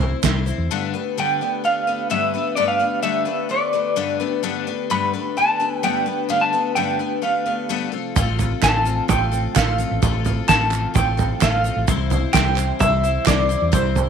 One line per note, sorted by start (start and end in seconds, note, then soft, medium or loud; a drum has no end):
0.00 0.13 C2 loud
0.00 0.67 C3 medium
0.00 0.67 E3 medium
0.00 0.68 A3 medium
0.00 0.22 C4 soft
0.00 0.67 E4 medium
0.00 0.23 E4 medium
0.00 0.20 C5 medium
0.00 0.23 C5 medium
0.00 floor tom medium
0.23 0.51 C2 medium
0.23 0.47 C3 medium
0.23 0.47 G3 medium
0.23 0.47 C4 medium
0.23 0.46 E4 medium
0.23 0.45 C5 medium
0.23 kick medium
0.23 snare loud
0.23 clap medium
0.23 shaker loud
0.46 0.71 C4 soft
0.46 0.70 E4 soft
0.46 0.70 C5 medium
0.46 shaker medium
0.58 0.67 E2 medium
0.69 0.94 G2 medium
0.69 7.88 D3 medium
0.69 0.94 D3 medium
0.69 7.89 A3 medium
0.69 0.94 A3 medium
0.69 7.89 B3 medium
0.69 0.94 B3 loud
0.69 0.94 D4 loud
0.69 7.89 G4 medium
0.69 0.93 B4 loud
0.94 1.17 A3 soft
0.94 1.17 B3 medium
0.94 1.17 D4 medium
0.94 1.17 B4 medium
1.17 1.41 G2 medium
1.17 1.41 D3 medium
1.17 1.41 A3 medium
1.17 1.41 B3 medium
1.17 1.41 D4 medium
1.17 1.40 B4 medium
1.17 1.64 G5 loud
1.41 1.63 A3 soft
1.41 1.63 B3 soft
1.41 1.64 D4 medium
1.41 1.64 B4 medium
1.64 1.87 A3 medium
1.64 1.87 B3 medium
1.64 1.87 D4 medium
1.64 1.86 B4 medium
1.64 2.08 F5 loud
1.87 2.09 A3 soft
1.87 2.10 B3 soft
1.87 2.10 D4 medium
1.87 2.10 B4 medium
2.10 2.33 G2 medium
2.10 2.34 D3 medium
2.10 2.34 A3 medium
2.10 2.34 B3 medium
2.10 2.33 D4 medium
2.10 2.33 B4 medium
2.10 2.55 E5 medium
2.34 2.56 A3 soft
2.34 2.56 B3 medium
2.34 2.56 D4 medium
2.34 2.56 B4 medium
2.55 2.80 G2 medium
2.55 2.80 D3 medium
2.55 2.80 A3 medium
2.55 2.80 B3 medium
2.55 2.79 D4 medium
2.55 2.78 B4 medium
2.55 2.68 D5 loud
2.68 3.02 F5 loud
2.79 3.02 A3 soft
2.79 3.02 B3 soft
2.79 3.02 D4 soft
2.79 3.02 B4 medium
3.02 3.26 G2 medium
3.02 3.27 D3 medium
3.02 3.26 A3 medium
3.02 3.26 B3 medium
3.02 3.24 D4 medium
3.02 3.24 B4 medium
3.02 3.51 E5 loud
3.25 3.48 A3 soft
3.25 3.48 B3 soft
3.25 3.49 D4 medium
3.25 3.49 B4 medium
3.49 3.73 A3 medium
3.49 3.73 B3 medium
3.49 3.72 D4 medium
3.49 3.72 B4 medium
3.49 4.17 D5 medium
3.73 3.95 A3 soft
3.73 3.96 B3 soft
3.73 3.96 D4 medium
3.73 3.96 B4 medium
3.96 4.20 G2 medium
3.96 4.20 D3 medium
3.96 4.20 A3 medium
3.96 4.20 B3 medium
3.96 4.19 D4 loud
3.96 4.19 B4 loud
4.20 4.42 A3 medium
4.20 4.42 B3 medium
4.20 4.43 D4 medium
4.20 4.43 B4 medium
4.43 4.66 G2 medium
4.43 4.67 D3 medium
4.43 4.67 A3 medium
4.43 4.67 B3 loud
4.43 4.66 D4 loud
4.43 4.66 B4 loud
4.67 4.89 A3 medium
4.67 4.90 B3 medium
4.67 4.90 D4 medium
4.67 4.90 B4 medium
4.90 5.13 G2 medium
4.90 5.14 D3 medium
4.90 5.14 A3 medium
4.90 5.14 B3 medium
4.90 5.13 D4 medium
4.90 5.12 B4 medium
4.90 5.37 B5 loud
5.14 5.36 A3 soft
5.14 5.36 B3 medium
5.14 5.37 D4 medium
5.14 5.37 B4 medium
5.37 5.60 A3 medium
5.37 5.60 B3 medium
5.37 5.59 D4 medium
5.37 5.59 B4 medium
5.37 5.84 A5 loud
5.60 5.82 A3 soft
5.60 5.82 B3 medium
5.60 5.83 D4 medium
5.60 5.83 B4 medium
5.83 6.07 G2 medium
5.83 6.07 D3 medium
5.83 6.06 A3 medium
5.83 6.06 B3 loud
5.83 6.05 D4 loud
5.83 6.05 B4 loud
5.83 6.32 G5 loud
6.06 6.28 A3 soft
6.06 6.28 B3 medium
6.06 6.29 D4 medium
6.06 6.29 B4 medium
6.29 6.53 G2 medium
6.29 6.53 D3 medium
6.29 6.53 A3 medium
6.29 6.53 B3 medium
6.29 6.53 D4 medium
6.29 6.52 B4 medium
6.29 6.42 F5 loud
6.41 6.75 A5 loud
6.53 6.75 A3 soft
6.53 6.75 B3 medium
6.53 6.75 D4 medium
6.53 6.76 B4 medium
6.75 6.99 G2 medium
6.75 7.00 D3 medium
6.75 7.00 A3 medium
6.75 6.99 B3 medium
6.75 6.99 D4 medium
6.75 6.98 B4 medium
6.75 7.22 G5 loud
6.99 7.21 A3 soft
6.99 7.21 B3 soft
6.99 7.22 D4 soft
6.99 7.23 B4 medium
7.22 7.46 A3 medium
7.22 7.46 B3 medium
7.22 7.45 D4 medium
7.22 7.44 B4 medium
7.22 7.89 F5 medium
7.46 7.69 A3 soft
7.46 7.69 B3 soft
7.46 7.69 D4 soft
7.46 7.69 B4 medium
7.69 7.93 G2 medium
7.69 7.93 D3 medium
7.69 7.93 A3 medium
7.69 7.93 B3 medium
7.69 7.93 D4 loud
7.69 7.91 B4 loud
7.92 11.85 C3 medium
7.92 11.85 F3 medium
7.92 11.84 A3 medium
7.92 8.15 C4 medium
7.92 8.15 F4 medium
7.92 9.78 F4 medium
7.92 8.16 A4 medium
8.16 8.52 A1 loud
8.16 8.39 A3 medium
8.16 8.40 C4 loud
8.16 8.39 F4 loud
8.16 8.37 A4 loud
8.16 kick loud
8.16 floor tom loud
8.16 shaker loud
8.39 8.62 C4 soft
8.39 8.62 F4 medium
8.39 8.62 A4 medium
8.39 floor tom medium
8.39 shaker medium
8.62 8.99 A1 medium
8.62 8.86 A3 medium
8.62 8.86 C4 medium
8.62 8.85 F4 medium
8.62 8.84 A4 medium
8.62 9.09 A5 loud
8.62 kick loud
8.62 snare loud
8.62 clap medium
8.62 shaker loud
8.85 9.08 C4 medium
8.85 9.08 F4 medium
8.85 9.08 A4 medium
8.85 shaker medium
9.08 9.45 A1 loud
9.08 9.32 A3 medium
9.08 9.32 C4 medium
9.08 9.31 F4 medium
9.08 9.30 A4 medium
9.08 9.56 G5 loud
9.08 kick loud
9.08 floor tom loud
9.08 shaker loud
9.32 9.54 C4 medium
9.32 9.54 F4 soft
9.32 9.55 A4 medium
9.32 shaker medium
9.55 9.83 A1 medium
9.55 9.79 A3 medium
9.55 9.79 C4 medium
9.55 9.78 F4 medium
9.55 9.77 A4 medium
9.55 9.99 F5 medium
9.55 kick loud
9.55 snare loud
9.55 clap loud
9.55 shaker loud
9.78 11.86 E3 medium
9.78 10.01 C4 soft
9.78 10.02 F4 medium
9.78 10.02 A4 medium
9.78 shaker medium
9.91 10.00 A1 medium
10.02 10.38 A1 loud
10.02 10.25 A3 medium
10.02 10.25 C4 medium
10.02 10.24 F4 medium
10.02 10.23 A4 loud
10.02 kick loud
10.02 floor tom loud
10.02 shaker medium
10.24 10.48 C4 medium
10.24 10.48 F4 medium
10.24 10.48 A4 medium
10.24 floor tom medium
10.24 shaker medium
10.48 10.85 A1 medium
10.48 10.72 A3 medium
10.48 10.72 C4 medium
10.48 10.71 F4 medium
10.48 10.70 A4 medium
10.48 10.95 A5 loud
10.48 kick loud
10.48 snare loud
10.48 clap medium
10.48 shaker loud
10.71 10.94 C4 soft
10.71 10.94 F4 medium
10.71 10.95 A4 medium
10.71 clap medium
10.71 shaker medium
10.94 11.31 A1 loud
10.94 11.18 A3 medium
10.94 11.18 C4 medium
10.94 11.17 F4 medium
10.94 11.16 A4 medium
10.94 11.42 G5 loud
10.94 kick loud
10.94 floor tom loud
10.94 shaker loud
11.17 11.40 C4 soft
11.17 11.40 F4 medium
11.17 11.40 A4 medium
11.17 floor tom medium
11.17 shaker medium
11.40 11.69 A1 loud
11.40 11.64 A3 medium
11.40 11.64 C4 loud
11.40 11.64 F4 medium
11.40 11.63 A4 medium
11.40 11.85 F5 medium
11.40 kick loud
11.40 snare loud
11.40 clap medium
11.40 shaker loud
11.64 11.87 C4 soft
11.64 11.88 F4 medium
11.64 11.88 A4 medium
11.64 shaker medium
11.76 11.85 A1 loud
11.87 12.24 C2 loud
11.87 12.11 C3 medium
11.87 14.09 C3 medium
11.87 14.09 E3 medium
11.87 12.11 G3 medium
11.87 14.09 G3 medium
11.87 12.11 C4 medium
11.87 14.09 E4 medium
11.87 12.10 E4 medium
11.87 12.09 C5 medium
11.87 kick loud
11.87 floor tom loud
11.87 shaker medium
12.10 12.33 C4 soft
12.10 12.34 E4 medium
12.10 12.34 C5 medium
12.10 floor tom medium
12.10 shaker medium
12.33 12.70 C2 loud
12.33 12.57 C3 medium
12.33 12.58 G3 medium
12.33 12.57 C4 medium
12.33 12.56 E4 medium
12.33 12.55 C5 loud
12.33 12.80 G5 loud
12.33 kick loud
12.33 snare loud
12.33 clap loud
12.33 shaker loud
12.56 12.79 C4 soft
12.56 12.80 E4 soft
12.56 12.80 C5 medium
12.56 clap medium
12.56 shaker medium
12.79 13.17 C2 medium
12.79 13.03 G3 medium
12.79 13.04 C4 medium
12.79 13.03 E4 medium
12.79 13.02 C5 medium
12.79 13.24 E5 loud
12.79 kick loud
12.79 floor tom loud
12.79 shaker loud
13.04 13.26 C4 soft
13.04 13.26 E4 medium
13.04 13.26 C5 medium
13.04 shaker medium
13.26 13.54 C2 loud
13.26 13.50 C3 medium
13.26 13.50 G3 medium
13.26 13.50 C4 medium
13.26 13.49 E4 medium
13.26 13.48 C5 medium
13.26 13.70 D5 medium
13.26 kick loud
13.26 snare loud
13.26 clap loud
13.26 shaker loud
13.49 13.71 C4 soft
13.49 13.72 E4 medium
13.49 13.72 C5 medium
13.49 shaker medium
13.62 13.71 E2 medium
13.72 14.09 C2 loud
13.72 13.96 C3 medium
13.72 13.96 G3 medium
13.72 13.96 C4 medium
13.72 13.95 E4 medium
13.72 14.09 C5 medium
13.72 13.94 C5 medium
13.72 kick loud
13.72 floor tom loud
13.72 shaker medium
13.95 14.09 C4 soft
13.95 14.09 E4 soft
13.95 14.09 C5 medium
13.95 floor tom medium
13.95 shaker medium